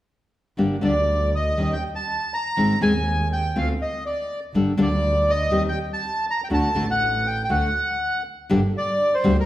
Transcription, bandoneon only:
0.84 D5
1.35 D#5
1.73 G5
1.95 A5
2.34 A#5
2.82 G#5
3.33 G5
3.58 F5
3.82 D#5
4.06 D5
4.82 D5
5.30 D#5
5.69 G5
5.93 A5
6.31 A#5
6.44 G5
6.54 A5
6.91 F#5
7.27 G5
7.44 G5
7.51 F#5
8.78 D5
9.14 C5
9.40 A#4

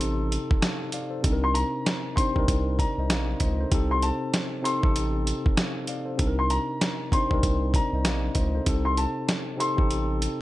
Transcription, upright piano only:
Already playing: C6
1.44 C6
1.54 A#5
2.16 C6
2.79 A#5
3.91 C6
4.03 A5
4.64 C6
6.39 C6
6.50 A#5
7.13 C6
7.76 A#5
8.85 C6
8.98 A5
9.60 C6

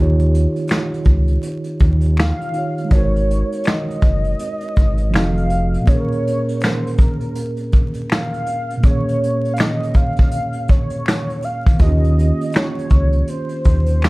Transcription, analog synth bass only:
Already playing: D#2
1.06 C#2
1.81 D#2
2.92 G#1
4.03 F#1
4.77 G#1
5.14 F1
11.80 D#2
12.91 C#2
13.66 D#2

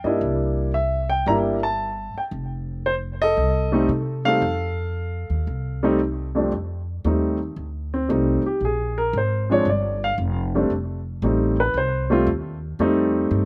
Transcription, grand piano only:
Already playing: F5
0.04 G3 A#3 D4 E4 D#5
0.74 E5
1.10 G5
1.26 G3 A#3 D4 E4 E5 A#5
1.63 A5
2.18 G5
2.86 C5
3.22 A4 D#5
3.72 G3 A3 C4 D#4
4.25 G3 A3 C4 D#4 A4 F5
5.83 G3 A3 C4 D#4
6.35 F2 G3 A3 C4 D4
7.05 G3 A3 C4 D#4
7.94 C4
8.09 G3 A3 C4 D#4
8.46 G4
8.65 G#4
8.98 A#4
9.18 C5
9.50 F3 G#3 C4 D4 C#5
9.69 D5
10.04 F5
10.55 G3 A3 C4 D4
11.23 G3 A3 C4 D#4
11.60 B4
11.77 C5
12.10 G3 A3 C4 F4
12.80 G3 A3 C4 D#4

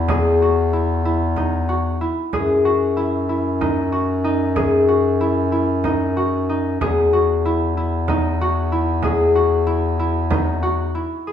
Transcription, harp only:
Already playing: E4 F#4
0.10 G#4
0.42 F#4
0.73 E4
1.05 E4
1.37 D#4
1.69 F#4
2.01 E4
2.33 G#4
2.65 F#4
2.97 E4
3.29 E4
3.61 D#4
3.92 F#4
4.24 D#4
4.56 G#4
4.88 F#4
5.21 E4
5.52 E4
5.85 D#4
6.17 F#4
6.49 D#4
6.81 G#4
7.13 F#4
7.45 E4
7.77 E4
8.09 D#4
8.41 F#4
8.72 E4
9.04 G#4
9.35 F#4
9.67 E4
9.99 E4
10.31 D#4
10.63 F#4
10.95 E4
11.27 G#4

